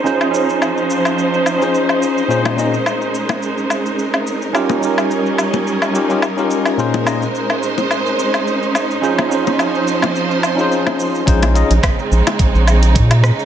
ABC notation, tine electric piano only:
X:1
M:4/4
L:1/16
Q:"Swing 16ths" 1/4=107
K:Bbdor
V:1 name="Tine electric piano"
[DEFAc]2 [DEFAc]8 z [DEFAc]4- [DEFAc] | [B,,DEFAc]2 [B,,DEFAe] z12 z | [DEFGB]2 [DEFGB]8 [DEFGB] [DEFGB] z [DEFGB]3 | [B,,DEFAc]2 [B,,DEFAe] z12 z |
[DEFAc]2 [DEFAc]8 z [DEFAc]4- [DEFAc] | [DEFAc]2 [DEFAe] z12 z |]